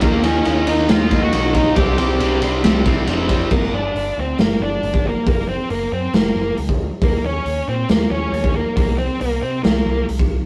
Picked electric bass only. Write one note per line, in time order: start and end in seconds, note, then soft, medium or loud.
0.02 0.38 D#2 medium
0.46 0.64 D#2 medium
0.67 0.86 D#2 medium
0.89 1.08 D#2 medium
1.12 1.30 D#2 medium
1.33 1.69 B1 medium
1.76 1.95 C2 loud
1.99 2.17 C2 medium
2.20 2.38 C2 medium
2.42 2.60 C2 medium
2.64 2.82 C2 loud
2.86 3.04 C2 medium
3.08 3.44 F1 medium
3.51 3.65 G1 medium
3.73 3.87 G1 medium
3.95 4.09 G1 medium
4.18 4.32 D2 medium
4.39 4.53 G1 medium
4.60 4.74 G1 medium
4.83 5.11 G1 medium
5.26 5.54 F#1 medium
5.71 5.85 F#1 medium
5.92 6.06 F#2 medium
6.14 6.28 F#1 medium
6.36 6.50 F#1 medium
6.58 6.86 D2 medium
7.02 7.16 D#2 medium
7.23 7.37 D#2 medium
7.45 7.60 D#2 medium
7.68 7.82 A#2 medium
7.89 8.04 D#2 medium
8.10 8.25 D#2 medium
8.32 8.61 D#2 medium
8.77 9.05 C2 medium
9.21 9.35 C2 medium
9.43 9.57 C3 medium
9.64 9.79 C2 medium
9.86 10.01 C2 medium
10.09 10.37 C2 medium